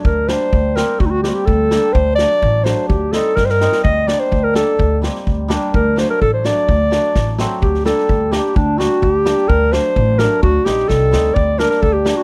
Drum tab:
SD |--o---o-|--o---o-|--o---o-|--o-oooo|
BD |o---o---|o---o---|o---o---|o---o---|

SD |--o---o-|--oo--o-|--o---o-|--o-o-o-|
BD |o---o---|o---o---|o---o---|o---o---|

SD |-ooo--o-|--o---o-|--o---o-|--ooo-o-|
BD |o---o---|o---o---|o---o---|o---o---|

SD |--oo--o-|
BD |o---o---|